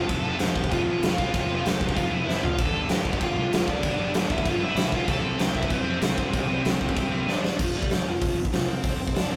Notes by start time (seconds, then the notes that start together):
Already playing: F2
0.07 F1 F2 C3 F3 A4 A5, kick, crash
0.24 F1 F2 C3 F3 A4 A5
0.38 F1 F2 C3 F3 G4 G5, snare, crash
0.55 F2 C3 F3 G4 G5, kick
0.64 kick
0.69 F1 F2 C3 F3 F4 F5, kick, crash
0.87 A1 F2 C3 F3
1.03 F1 F2 C3 F3, snare, crash
1.18 C2 F2 C3 F3 F4 F5, kick
1.33 F1 F2 C3 F3, kick, crash
1.49 F1 F2 C3 F3
1.64 F1 F2 C3 F3 G4 G5, snare, crash
1.80 F1 F2 C3 F3, kick
1.89 kick
1.95 F1 F2 C3 F3 F4 F5, kick, crash
2.11 F1 F2 C3 F3 E4 E5
2.26 F#1 F2 C3 F3 E4 E5, snare
2.40 F2 C3 F3 F4 F5, floor tom
2.57 G1 G2 D3 G3 A4 A5, kick, crash
2.73 G1 G2 D3 G3
2.88 G1 G2 D3 G3 G4 G5, snare, crash
3.05 G2 D3 G3, kick
3.13 kick
3.20 G1 G2 D3 G3 F4 F5, kick, crash
3.36 C2 G2 D3 G3
3.51 G1 G2 D3 G3, snare, crash
3.66 D2 G2 D3 G3 D4 D5, kick
3.83 G1 G2 D3 G3, kick, crash
3.97 G1 G2 D3 G3
4.14 G1 G2 D3 G3 D4 D5, snare, crash
4.28 G1 G2 D3 G3 E4 E5, kick
4.38 kick
4.44 G1 G2 D3 G3, kick, crash
4.48 F4 F5
4.60 G1 G2 D3 G3 E4 E5
4.75 B1 G2 D3 G3, snare, crash
4.91 G2 D3 G3 F4 F5, kick
5.05 C2 C3 G3 C4 A4, kick, crash
5.10 A5
5.21 C2 C3 G3 C4
5.37 C2 C3 G3 C4 G4 G5, snare, crash
5.54 C3 G3 C4 E4 E5, kick
5.63 kick
5.68 C2 C3 G3 C4 C5, kick, crash
5.84 F2 C3 G3 C4
5.99 C2 C3 G3 C4, snare, crash
6.16 G2 C3 G3 C4, kick
6.32 C2 C3 G3 C4, kick, crash
6.49 C2 C3 G3 C4
6.64 C2 C3 G3 C4, snare, crash
6.81 C2 C3 G3 C4, kick
6.89 kick
6.95 C2 C3 G3 C4, kick, crash
7.10 C2 C3 G3 C4
7.26 G2 C3 G3 C4 D5, snare
7.32 D4
7.42 C3 G3 C4, snare
7.56 F1 F2 C3 F3, kick, crash
7.61 F4
7.73 F1 F2 C3 G3 G4
7.82 kick
7.88 F1 F2 C3, snare, open hi-hat
8.04 F1 F2 C3 F3
8.09 F4
8.19 F1 F2 C3 F3, kick, open hi-hat
8.37 F1 F2 C3
8.45 kick
8.51 C2 F2 C3 F3 F4, snare, open hi-hat
8.68 F2 C3 C4 C5
8.83 F1 F2 C3 F3, kick, open hi-hat
8.99 F1 F2 C3 C4 C5
9.07 kick
9.14 F1 F2 C3 D4 D5, snare, open hi-hat
9.29 F1 F2 C3 C4 C5